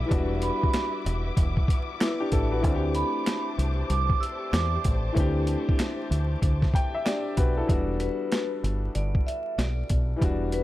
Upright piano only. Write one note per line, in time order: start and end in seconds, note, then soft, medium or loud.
0.06 2.57 E3 medium
0.06 2.58 G3 medium
0.06 1.65 B3 medium
0.11 1.66 D4 medium
0.11 1.67 F#4 medium
2.00 2.20 B3 medium
2.00 2.19 E4 medium
2.20 2.32 D4 medium
2.20 2.31 G4 medium
2.33 2.51 E4 medium
2.33 2.51 A4 medium
2.51 2.67 F#4 medium
2.51 2.81 B4 medium
2.61 5.11 E3 medium
2.61 5.12 A3 medium
2.61 5.13 C4 medium
2.66 5.13 D4 medium
2.66 2.74 F#4 medium
2.74 5.18 G4 medium
5.12 7.63 E3 medium
5.12 7.64 A3 medium
5.12 7.65 C4 medium
5.18 7.03 D4 medium
5.18 7.04 G4 loud
6.75 6.93 G5 medium
6.94 7.05 E5 medium
7.05 7.36 D4 medium
7.05 7.35 G4 medium
7.05 7.65 D5 medium
7.37 7.56 F#4 medium
7.37 7.56 B4 medium
7.57 7.88 E4 medium
7.57 7.87 A4 medium
7.65 10.15 E3 medium
7.65 10.17 G3 medium
7.65 10.18 B3 medium
7.71 10.18 D4 medium
7.71 10.19 F#4 medium
10.16 10.63 E3 medium
10.16 10.63 G3 medium
10.16 10.63 B3 medium
10.22 10.63 D4 medium
10.22 10.63 F#4 medium